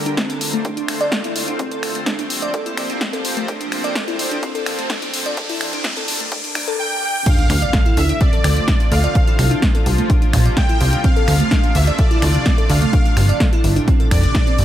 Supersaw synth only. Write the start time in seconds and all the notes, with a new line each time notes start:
6.79 G5
7.26 F5
7.97 E5
8.21 D5
8.91 F5
10.57 G5
11.04 F5
11.75 E5
11.99 D5
12.70 F5
14.11 D5